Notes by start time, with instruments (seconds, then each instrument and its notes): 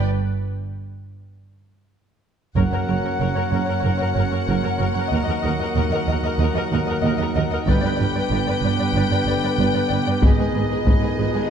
2.56 double bass section F#1, tuba F#1, cello section F#2, french horn section F#3 A#3, pipe organ C#4 F#4 A#4 F#5, viola section A#4, violin section C#5 F#5, taiko
2.71 cello section F#2, viola section A#4, violin section C#5
2.88 tuba F#1, double bass section F#1, cello section F#2, viola section A#4, violin section C#5
3.04 cello section F#2, viola section A#4, violin section C#5
3.20 tuba F#1, double bass section F#1, cello section F#2, viola section A#4, violin section C#5
3.35 cello section F#2, viola section A#4, violin section C#5
3.50 double bass section F#1, tuba F#1, cello section F#2, viola section A#4, violin section C#5
3.65 cello section F#2, viola section A#4, violin section C#5
3.79 violin section C#5
3.84 double bass section F#1, tuba F#1, cello section F#2, viola section A#4
3.98 cello section F#2, viola section A#4, violin section C#5
4.14 double bass section F#1, tuba F#1, cello section F#2, viola section A#4, violin section C#5
4.30 cello section F#2, viola section A#4, violin section C#5
4.46 tuba F#1, double bass section F#1, cello section F#2, viola section A#4, violin section C#5
4.62 cello section F#2, viola section A#4, violin section C#5
4.78 double bass section F#1, tuba F#1, cello section F#2, viola section A#4, violin section C#5
4.93 cello section F#2, violin section C#5
4.98 viola section A#4
5.07 cello section D#2, tuba D#2, pipe organ D#4 D#5, violin section D#5
5.12 double bass section D#2, viola section A#4
5.24 cello section D#2, violin section D#5
5.30 viola section A#4
5.42 cello section D#2, tuba D#2, double bass section D#2, viola section A#4, violin section D#5
5.59 cello section D#2, viola section A#4, violin section D#5
5.74 tuba D#2, cello section D#2, double bass section D#2, viola section A#4, violin section D#5
5.90 cello section D#2, viola section A#4, violin section D#5
6.06 cello section D#2, tuba D#2, double bass section D#2, violin section D#5
6.10 viola section A#4
6.22 cello section D#2, viola section A#4, violin section D#5
6.38 cello section D#2, double bass section D#2, tuba D#2, violin section D#5
6.42 viola section A#4
6.54 cello section D#2, viola section A#4, violin section D#5
6.71 tuba D#2, double bass section D#2, cello section D#2, viola section A#4, violin section D#5
6.86 cello section D#2, viola section A#4, violin section D#5
7.01 tuba D#2, cello section D#2, double bass section D#2, violin section D#5
7.05 viola section A#4
7.17 cello section D#2, violin section D#5
7.22 viola section A#4
7.34 tuba D#2, cello section D#2, double bass section D#2, viola section A#4, violin section D#5
7.51 cello section D#2, viola section A#4, violin section D#5
7.65 tuba G1, double bass section G1, cello section G2, pipe organ D4 G4 B4 G5, violin section D5 G5, taiko
7.70 french horn section D3 B3, viola section B4
7.81 cello section G2, viola section B4, violin section D5
7.96 tuba G1, double bass section G1, cello section G2, violin section D5
8.01 viola section B4
8.15 cello section G2, viola section B4, violin section D5
8.30 tuba G1, double bass section G1, cello section G2, viola section B4, violin section D5
8.47 cello section G2, viola section B4, violin section D5
8.62 double bass section G1, tuba G1, cello section G2, viola section B4, violin section D5
8.78 cello section G2, viola section B4, violin section D5
8.93 double bass section G1, tuba G1, cello section G2, viola section B4, violin section D5
9.10 cello section G2, viola section B4, violin section D5
9.26 double bass section G1, tuba G1, cello section G2, viola section B4, violin section D5
9.42 cello section G2, viola section B4, violin section D5
9.58 double bass section G1, tuba G1, cello section G2, viola section B4, violin section D5
9.73 cello section G2, viola section B4, violin section D5
9.88 tuba G1, double bass section G1, cello section G2, viola section B4, violin section D5
10.06 cello section G2, viola section B4, violin section D5
10.21 tuba G#1, double bass section G#1, cello section G#2, french horn section D#3, pipe organ D#4 G#4 D#5, violin section B4 D#5, taiko, cymbal swell
10.25 viola section G#4
10.38 cello section G#2, viola section G#4, violin section B4
10.53 tuba G#1, double bass section G#1, cello section G#2, viola section G#4, violin section B4
10.70 cello section G#2, viola section G#4, violin section B4
10.85 double bass section G#1, tuba G#1, cello section G#2, viola section G#4, violin section B4, taiko
11.01 cello section G#2, viola section G#4, violin section B4
11.17 tuba G#1, double bass section G#1, cello section G#2, viola section G#4, violin section B4
11.34 cello section G#2, viola section G#4, violin section B4